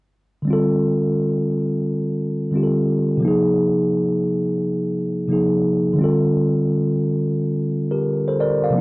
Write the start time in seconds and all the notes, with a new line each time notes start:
0.42 D3 G3
0.48 C4 F4
0.53 A4
2.51 D3 G3 C4
2.56 F4 G4
2.63 A4
3.17 C3 F3
3.23 A#3 D#4
3.28 G#4
5.27 C3 F3 A#3
5.31 D#4 G#4
5.93 D3 G3
5.99 C4 F4
6.04 A4
7.91 G4 A#4
8.28 A4 C5
8.40 A#4 D5
8.64 D5 F5
8.70 C3 F3
8.75 A#3 D#4